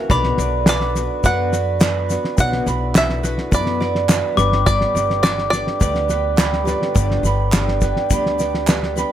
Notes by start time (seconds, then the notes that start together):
Already playing: A#3 F#4 A#4 E5 A#5
0.08 B1 B2 D3 F#3 B3 D4 F#4 B4 D5 B5, kick, snare, shaker
0.24 snare
0.37 B1 B3 D4 F#4 D5, snare, shaker
0.66 F#3 B3 D4 F#4 B4 D5, snare, clap, shaker
0.81 snare
0.95 B3 D4 F#4, snare, shaker
1.24 F#2 B2 F#3 B3 D4 F#4 D5 F#5, kick, snare, shaker
1.52 B3 D4 F#4 B4, snare, shaker
1.81 F#3 B3 D4 F#4 B5, snare, clap, shaker
2.09 B3 D4 F#4, snare, shaker
2.25 snare
2.37 B1 B2 F#3 B3 D4 E4 F#4 B4 C#5 F#5, kick, snare, shaker
2.53 snare
2.66 B1 B3 D4 F#4 B5, snare, shaker
2.95 F#3 B3 D4 F#4 E5, snare, clap, shaker
3.09 snare
3.23 B3 D4 F#4 B4, snare, shaker
3.38 snare
3.51 F#2 B2 F#3 B3 D4 F#4 B4 D5 B5, kick, snare, shaker
3.66 snare
3.80 B3 D4 F#4 D5, snare
3.95 snare
4.09 F#3 B3 D4 F#4 B4, snare, clap, shaker
4.35 G1 G2 G3 B3 D4 G4 B4 D5 B5 D6, snare, shaker
4.40 G3
4.52 snare
4.66 G2 D3 G3 B3 D4 G4 D5 B5, kick, snare, shaker
4.81 snare
4.95 G1 G3 B3 D4 G4 D5, snare, shaker
5.10 snare
5.23 G3 B3 D4 G4 B4 D5, snare, clap, shaker
5.38 snare
5.50 B3 D4 G4 D5, snare, shaker
5.54 G3
5.67 snare
5.80 D2 G2 D3 G3 B3 D4 G4 D5, kick, snare, shaker
5.95 snare
6.08 G3 B3 D4 G4 B4, snare, shaker
6.36 G3 B3 D4 G4 B5, snare, clap, shaker
6.53 snare
6.63 G1 G2 G3 B3 D4 G4 B4 D5, snare, shaker
6.68 G3 D5
6.82 snare
6.94 G1 G2 D3 G3 B3 D4 G4, kick, snare, shaker
7.11 snare
7.23 G1 G3 B3 D4 G4 B5, snare, shaker
7.52 G3 B3 D4 G4 D5, snare, clap, shaker
7.68 snare
7.81 G3 B3 D4 G4 B4, kick, snare, shaker
7.96 snare
8.10 D2 G2 D3 G3 B3 D4 G4 B5, kick, snare, shaker
8.26 snare
8.38 G3 B3 D4 G4 D5, snare, shaker
8.54 snare
8.67 G3 B3 D4 G4 B4, snare, clap, shaker
8.83 snare
8.95 G3 B3 D4 G4 B4 D5 B5, snare, shaker